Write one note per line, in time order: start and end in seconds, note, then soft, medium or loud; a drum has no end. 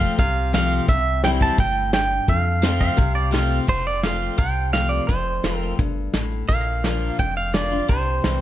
0.00 0.11 F1 medium
0.00 0.15 F2 medium
0.00 0.17 F3 medium
0.00 0.17 A3 medium
0.00 0.17 C4 loud
0.00 0.17 F4 loud
0.00 0.18 F5 medium
0.00 kick medium
0.19 0.81 C2 medium
0.19 0.85 C3 loud
0.19 0.54 F5 medium
0.19 kick loud
0.19 closed hi-hat medium
0.53 0.86 F3 medium
0.53 0.87 A3 medium
0.53 0.87 C4 medium
0.53 0.87 F4 medium
0.53 0.87 F5 loud
0.53 snare loud
0.53 closed hi-hat medium
0.71 closed hi-hat medium
0.88 1.50 C2 medium
0.88 1.56 C3 medium
0.88 1.21 E5 loud
0.88 kick loud
0.88 closed hi-hat medium
1.24 1.57 E3 medium
1.24 1.57 G3 medium
1.24 1.58 C4 medium
1.24 1.58 E4 loud
1.24 1.30 G5 medium
1.24 snare loud
1.24 closed hi-hat medium
1.41 1.60 A5 medium
1.41 kick medium
1.58 2.20 G1 medium
1.58 1.92 A2 loud
1.58 1.93 G5 loud
1.58 kick loud
1.58 closed hi-hat medium
1.93 2.27 G2 medium
1.93 2.30 G5 loud
1.93 snare loud
1.93 closed hi-hat medium
2.11 closed hi-hat medium
2.28 2.90 F2 medium
2.28 2.95 F2 medium
2.28 3.47 F5 medium
2.28 kick medium
2.28 closed hi-hat medium
2.62 2.96 F3 medium
2.62 2.96 A3 medium
2.62 2.97 C4 loud
2.62 2.97 F4 loud
2.62 snare loud
2.62 closed hi-hat medium
2.81 3.15 F5 loud
2.81 kick medium
2.97 3.60 C2 medium
2.97 3.64 C3 loud
2.97 kick loud
2.97 closed hi-hat medium
3.15 3.32 D5 medium
3.31 3.66 F3 medium
3.31 3.66 A3 medium
3.31 3.66 C4 medium
3.31 3.66 F4 medium
3.31 3.58 F5 medium
3.31 snare loud
3.31 closed hi-hat medium
3.52 closed hi-hat medium
3.68 4.30 F1 medium
3.68 3.85 C5 medium
3.68 kick loud
3.68 crash medium
3.87 4.04 D5 medium
4.03 4.37 F3 soft
4.03 4.37 A3 medium
4.03 4.37 C4 medium
4.03 4.38 F4 medium
4.03 4.38 F5 medium
4.03 snare loud
4.03 closed hi-hat medium
4.21 closed hi-hat medium
4.38 5.00 C2 medium
4.38 5.05 C3 medium
4.38 4.71 G5 medium
4.38 kick loud
4.38 closed hi-hat medium
4.73 5.06 F3 medium
4.73 5.07 A3 medium
4.73 5.07 C4 medium
4.73 5.07 F4 medium
4.73 4.90 F5 loud
4.73 snare loud
4.73 closed hi-hat medium
4.89 5.08 D5 medium
4.89 closed hi-hat medium
5.07 5.40 F1 medium
5.07 5.76 F2 medium
5.07 5.57 C5 medium
5.07 kick loud
5.07 closed hi-hat medium
5.43 5.73 F1 medium
5.43 5.77 F3 medium
5.43 5.77 A3 medium
5.43 5.78 C4 medium
5.43 5.78 F4 medium
5.43 snare loud
5.43 closed hi-hat medium
5.57 5.74 A#4 medium
5.61 closed hi-hat medium
5.79 6.09 G1 medium
5.79 6.12 G2 medium
5.79 kick loud
5.79 closed hi-hat medium
6.14 6.44 A1 medium
6.14 6.47 A2 medium
6.14 snare loud
6.14 closed hi-hat medium
6.31 closed hi-hat medium
6.49 7.11 A#1 medium
6.49 7.15 A#2 medium
6.49 7.19 F5 medium
6.49 kick medium
6.49 closed hi-hat medium
6.84 7.18 F3 medium
6.84 7.18 A#3 medium
6.84 7.18 D4 medium
6.84 7.18 F4 medium
6.84 snare loud
6.84 closed hi-hat medium
7.01 closed hi-hat medium
7.19 7.81 F1 loud
7.19 7.86 F2 medium
7.19 7.36 G5 medium
7.19 kick loud
7.19 closed hi-hat medium
7.37 7.54 F5 medium
7.53 7.70 F3 medium
7.53 7.71 A#3 soft
7.53 7.71 D4 medium
7.53 7.70 F4 medium
7.53 7.87 D5 medium
7.53 snare loud
7.53 closed hi-hat medium
7.71 7.89 D4 medium
7.71 7.88 F4 medium
7.71 closed hi-hat medium
7.88 8.20 C2 medium
7.88 8.41 C3 medium
7.88 8.41 C5 medium
7.88 kick loud
7.88 closed hi-hat medium
8.24 8.41 C2 medium
8.24 8.41 E3 medium
8.24 8.41 G3 medium
8.24 8.41 C4 medium
8.24 8.41 E4 medium
8.24 snare loud
8.24 closed hi-hat soft